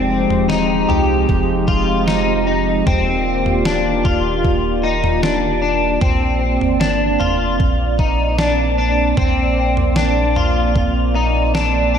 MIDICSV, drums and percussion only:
0, 0, Header, 1, 2, 480
1, 0, Start_track
1, 0, Tempo, 789474
1, 1742, Time_signature, 4, 2, 24, 8
1, 7287, End_track
2, 0, Start_track
2, 0, Title_t, "Drums"
2, 185, Note_on_c, 9, 43, 56
2, 246, Note_off_c, 9, 43, 0
2, 302, Note_on_c, 9, 38, 85
2, 363, Note_off_c, 9, 38, 0
2, 546, Note_on_c, 9, 43, 52
2, 607, Note_off_c, 9, 43, 0
2, 784, Note_on_c, 9, 36, 65
2, 788, Note_on_c, 9, 43, 54
2, 845, Note_off_c, 9, 36, 0
2, 849, Note_off_c, 9, 43, 0
2, 1022, Note_on_c, 9, 36, 88
2, 1082, Note_off_c, 9, 36, 0
2, 1263, Note_on_c, 9, 38, 94
2, 1323, Note_off_c, 9, 38, 0
2, 1743, Note_on_c, 9, 36, 105
2, 1744, Note_on_c, 9, 43, 105
2, 1804, Note_off_c, 9, 36, 0
2, 1805, Note_off_c, 9, 43, 0
2, 2104, Note_on_c, 9, 43, 52
2, 2164, Note_off_c, 9, 43, 0
2, 2222, Note_on_c, 9, 38, 99
2, 2282, Note_off_c, 9, 38, 0
2, 2462, Note_on_c, 9, 36, 75
2, 2463, Note_on_c, 9, 43, 59
2, 2523, Note_off_c, 9, 36, 0
2, 2524, Note_off_c, 9, 43, 0
2, 2703, Note_on_c, 9, 36, 71
2, 2707, Note_on_c, 9, 43, 46
2, 2764, Note_off_c, 9, 36, 0
2, 2768, Note_off_c, 9, 43, 0
2, 3063, Note_on_c, 9, 43, 60
2, 3123, Note_off_c, 9, 43, 0
2, 3181, Note_on_c, 9, 38, 94
2, 3242, Note_off_c, 9, 38, 0
2, 3656, Note_on_c, 9, 43, 110
2, 3660, Note_on_c, 9, 36, 102
2, 3717, Note_off_c, 9, 43, 0
2, 3721, Note_off_c, 9, 36, 0
2, 4021, Note_on_c, 9, 43, 50
2, 4082, Note_off_c, 9, 43, 0
2, 4139, Note_on_c, 9, 38, 92
2, 4200, Note_off_c, 9, 38, 0
2, 4381, Note_on_c, 9, 43, 57
2, 4442, Note_off_c, 9, 43, 0
2, 4620, Note_on_c, 9, 36, 72
2, 4623, Note_on_c, 9, 43, 53
2, 4681, Note_off_c, 9, 36, 0
2, 4684, Note_off_c, 9, 43, 0
2, 4858, Note_on_c, 9, 36, 85
2, 4918, Note_off_c, 9, 36, 0
2, 5098, Note_on_c, 9, 38, 95
2, 5159, Note_off_c, 9, 38, 0
2, 5577, Note_on_c, 9, 43, 95
2, 5579, Note_on_c, 9, 36, 110
2, 5637, Note_off_c, 9, 43, 0
2, 5640, Note_off_c, 9, 36, 0
2, 5941, Note_on_c, 9, 43, 57
2, 6002, Note_off_c, 9, 43, 0
2, 6055, Note_on_c, 9, 38, 91
2, 6116, Note_off_c, 9, 38, 0
2, 6301, Note_on_c, 9, 43, 57
2, 6362, Note_off_c, 9, 43, 0
2, 6540, Note_on_c, 9, 36, 73
2, 6540, Note_on_c, 9, 43, 52
2, 6600, Note_off_c, 9, 36, 0
2, 6600, Note_off_c, 9, 43, 0
2, 7021, Note_on_c, 9, 38, 98
2, 7082, Note_off_c, 9, 38, 0
2, 7287, End_track
0, 0, End_of_file